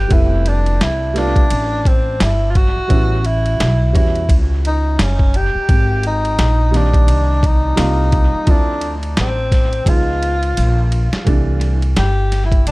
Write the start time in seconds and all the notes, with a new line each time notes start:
Already playing: G4
0.08 F1 G3 A3 B3 E4, kick, ride
0.13 E4
0.46 D4, ride
0.66 ride
0.81 C2 E4, snare, hi-hat pedal, ride
1.13 G3 A3 B3 F4, snare, ride
1.19 D4
1.36 kick, ride
1.50 A1, ride
1.85 C4, kick, ride
2.20 G1 E4, snare, hi-hat pedal, ride
2.51 F4
2.55 F#4, kick, ride
2.76 muted upright bass stroke
2.88 A1 G3 B3 C#4 E4, kick, ride
3.20 F#4
3.25 E4, ride
3.46 ride
3.60 B1, snare, hi-hat pedal, ride
3.92 E2 G3 B3 C#4 F#4, kick, ride
3.97 E4
4.15 ride
4.29 C#2, kick, ride
4.65 D#4, ride
4.99 F#1 C#4, snare, hi-hat pedal, ride
5.19 kick
5.34 G4, ride
5.55 muted upright bass stroke
5.69 G#1, kick, ride
6.03 D#4, ride
6.25 ride
6.39 A#1, snare, hi-hat pedal, ride
6.71 D#3 G3 A#3 C4, snare, ride
6.77 D4
6.93 kick, ride
7.08 C2, ride
7.43 D#4, kick, ride
7.76 C2 G3 A#3 C4 F4, snare, hi-hat pedal, ride
8.12 kick, ride
8.34 muted upright bass stroke
8.45 D2 F3 A3 C4 E4, kick, ride
8.51 D4
8.81 ride
9.03 ride
9.17 A1 C4, snare, hi-hat pedal, ride
9.52 kick, snare, ride
9.73 ride
9.85 C#2 F3 G#3 B3 D#4 F4, kick, ride
10.23 ride
10.43 ride
10.57 A#1, hi-hat pedal, ride
10.92 ride
11.13 muted upright bass stroke, snare, ride
11.24 C2 E3 G3 A3 D4, kick, ride
11.61 ride
11.82 ride
11.96 G1 G4, snare, hi-hat pedal, ride
12.32 snare, ride
12.45 E4
12.52 kick, ride
12.67 B1 D4, ride